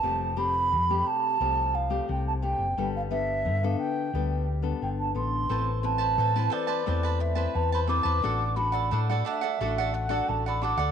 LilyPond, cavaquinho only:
\new Staff \with { instrumentName = "Cavaquinho" } { \time 4/4 \key a \minor \tempo 4 = 88 r1 | r1 | <a' c'' a''>8 r16 <b' c'' a''>16 <a' b' c'' a''>16 <b' c'' a''>16 <a' b' c'' a''>16 <b' c'' a''>16 <a' b' c'' a''>16 <b' c'' a''>16 r16 <b' c'' a''>8 <b' c'' a''>16 <a' b' c'' a''>16 <b' c'' a''>16 | <d' a' d'' fis''>8 r16 <a' d'' fis''>16 <d' a' d'' fis''>16 <a' d'' fis''>16 <d' a' d'' fis''>16 <a' d'' fis''>16 <d' a' d'' fis''>16 <a' d'' fis''>16 r16 <a' d'' fis''>8 <a' d'' fis''>16 <d' a' d'' fis''>16 <a' d'' fis''>16 | }